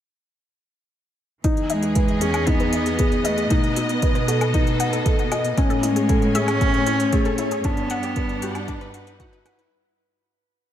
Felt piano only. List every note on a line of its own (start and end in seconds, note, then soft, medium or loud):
1.44 1.69 D#4 medium
1.96 2.20 B4 medium
2.21 2.46 G#4 medium
2.47 2.62 D#4 medium
2.99 3.24 G#4 medium
3.24 3.49 D#5 medium
3.50 3.75 D#4 medium
4.02 4.27 B4 medium
4.28 4.53 A4 medium
4.54 4.69 D#4 medium
5.06 5.31 A4 medium
5.32 5.56 D#5 medium
5.58 5.83 C#4 medium
6.10 6.34 A4 medium
6.35 6.60 G#4 medium
6.61 6.76 C#4 medium
7.13 7.38 G#4 medium
7.39 7.64 C#5 medium
7.65 7.89 D4 medium
8.17 8.41 B4 medium
8.43 8.67 G4 medium
8.68 8.83 D4 medium
9.20 9.44 F#4 medium
9.45 9.60 B4 loud